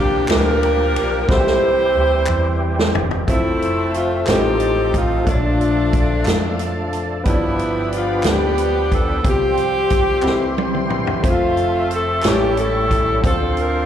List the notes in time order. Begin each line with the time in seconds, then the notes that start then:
Already playing: C2 A#2 F3 G3 A#3 D4 F4 G4 A#4
0.00 G4
0.28 D2 D4 G4 A#4, snare, clap, ride
0.63 ride
0.96 B1, ride
1.27 C2 C3 E3 G3 C4 E4 F#4 G4 C5, kick, snare
1.38 G4
1.47 snare
1.96 D2
2.26 E2, clap
2.79 snare
2.95 E1, floor tom
3.11 floor tom
3.27 F1 F3 A3 C4 E4 A4 C5 E5 A5, kick, closed hi-hat
3.62 closed hi-hat
3.94 F4, closed hi-hat
4.26 A1 A2 F3 A3 C4 D#4 F4 G#4 C5 D#5 A5, snare, clap, closed hi-hat
4.30 C4 G4 A4
4.60 closed hi-hat
4.94 F4, kick, closed hi-hat
5.24 A#1 A#2 F3 A3 C#4 D4 F4 A4 C#5 D5 F5, kick, closed hi-hat
5.29 F3 A3 D4
5.35 D5
5.61 closed hi-hat
5.93 kick, closed hi-hat
6.25 F2, snare, clap, closed hi-hat
6.59 closed hi-hat
6.93 closed hi-hat
7.24 G1 G2 F3 B3 D4 G4 C#5 D5 G5 B5, kick, closed hi-hat
7.29 B3 E4
7.34 D5
7.59 closed hi-hat
7.92 F4, closed hi-hat
8.23 D2, snare, clap, closed hi-hat
8.27 B3 D4 G4
8.58 closed hi-hat
8.92 A4, kick, closed hi-hat
9.23 C2 C3 F3 G3 C4 F4 G4 C5 C6, kick, closed hi-hat
9.29 G4
9.57 closed hi-hat
9.90 kick, closed hi-hat
10.22 C2 C3 G3 C4 E4 F#4 E5, clap
10.26 E3 C4, snare
10.30 G4
10.58 high tom
10.74 mid tom
10.90 mid tom
11.07 floor tom
11.22 F1 F3 A3 C4 F4 G#4 C5 E5 A5, kick, closed hi-hat
11.27 A3 C4 F4
11.32 A4
11.57 closed hi-hat
11.91 A4, closed hi-hat
12.22 A1 A2 G3 A3 C#4 E4 G4 A4 C#5 G5 A5 C#6, snare, clap, closed hi-hat
12.27 C#4 E4 G4
12.57 C#4 E4 A4, closed hi-hat
12.91 kick, closed hi-hat
13.21 D2 D3 F3 C4 D4 F4 C5 D5 A5 C6, kick, closed hi-hat
13.25 C4 F4 A4 C5
13.57 A#4, closed hi-hat